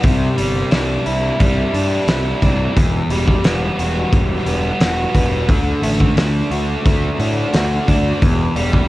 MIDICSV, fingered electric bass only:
0, 0, Header, 1, 2, 480
1, 0, Start_track
1, 0, Key_signature, 1, "minor"
1, 0, Tempo, 681818
1, 25, Time_signature, 4, 2, 24, 8
1, 6252, End_track
2, 0, Start_track
2, 0, Title_t, "Fingered electric bass"
2, 0, Program_c, 0, 33
2, 24, Note_on_c, 0, 36, 91
2, 197, Note_off_c, 0, 36, 0
2, 265, Note_on_c, 0, 31, 86
2, 437, Note_off_c, 0, 31, 0
2, 503, Note_on_c, 0, 36, 85
2, 676, Note_off_c, 0, 36, 0
2, 743, Note_on_c, 0, 36, 79
2, 915, Note_off_c, 0, 36, 0
2, 986, Note_on_c, 0, 36, 79
2, 1158, Note_off_c, 0, 36, 0
2, 1221, Note_on_c, 0, 43, 86
2, 1394, Note_off_c, 0, 43, 0
2, 1457, Note_on_c, 0, 36, 80
2, 1631, Note_off_c, 0, 36, 0
2, 1706, Note_on_c, 0, 36, 84
2, 1877, Note_off_c, 0, 36, 0
2, 1942, Note_on_c, 0, 28, 78
2, 2115, Note_off_c, 0, 28, 0
2, 2174, Note_on_c, 0, 28, 83
2, 2349, Note_off_c, 0, 28, 0
2, 2419, Note_on_c, 0, 28, 84
2, 2593, Note_off_c, 0, 28, 0
2, 2664, Note_on_c, 0, 28, 80
2, 2836, Note_off_c, 0, 28, 0
2, 2903, Note_on_c, 0, 28, 80
2, 3075, Note_off_c, 0, 28, 0
2, 3139, Note_on_c, 0, 28, 81
2, 3312, Note_off_c, 0, 28, 0
2, 3380, Note_on_c, 0, 28, 85
2, 3553, Note_off_c, 0, 28, 0
2, 3624, Note_on_c, 0, 28, 84
2, 3863, Note_off_c, 0, 28, 0
2, 3863, Note_on_c, 0, 38, 85
2, 4035, Note_off_c, 0, 38, 0
2, 4098, Note_on_c, 0, 33, 88
2, 4272, Note_off_c, 0, 33, 0
2, 4336, Note_on_c, 0, 38, 91
2, 4510, Note_off_c, 0, 38, 0
2, 4576, Note_on_c, 0, 38, 87
2, 4751, Note_off_c, 0, 38, 0
2, 4824, Note_on_c, 0, 38, 91
2, 4996, Note_off_c, 0, 38, 0
2, 5060, Note_on_c, 0, 45, 84
2, 5233, Note_off_c, 0, 45, 0
2, 5302, Note_on_c, 0, 38, 82
2, 5475, Note_off_c, 0, 38, 0
2, 5547, Note_on_c, 0, 38, 84
2, 5718, Note_off_c, 0, 38, 0
2, 5786, Note_on_c, 0, 28, 88
2, 5958, Note_off_c, 0, 28, 0
2, 6022, Note_on_c, 0, 28, 85
2, 6195, Note_off_c, 0, 28, 0
2, 6252, End_track
0, 0, End_of_file